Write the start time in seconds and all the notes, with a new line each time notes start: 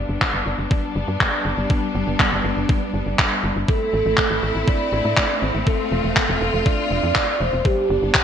Already playing: G3 B3 D4
0.09 G1
0.21 kick, clap
0.34 G1
0.46 G1
0.58 G1
0.71 kick
0.96 G1
1.08 G2
1.20 kick, clap
1.45 G1
1.57 G1
1.70 kick
1.95 G1
2.07 G1
2.20 kick, clap
2.32 G1
2.44 G1
2.57 G1
2.69 kick
2.94 G1
3.06 G1
3.19 kick, clap
3.44 G1
3.56 G1
3.68 A3 C4 E4 A4, kick
3.93 A1
4.06 A1
4.17 kick, clap
4.31 A1
4.43 A1
4.55 A1
4.67 D5, kick
4.92 A1
5.05 A2
5.17 kick, clap
5.41 A1 C5
5.55 A1
5.66 F4 A4, kick
5.92 F1
6.04 F1
6.16 kick, clap
6.29 F1
6.41 F1
6.54 F1
6.66 D5, kick
6.91 F1
7.03 F2
7.15 kick, clap
7.40 F1 C5
7.53 F1
7.65 G3 B3 D4 G4, kick
7.90 G1
8.02 G1
8.14 kick, clap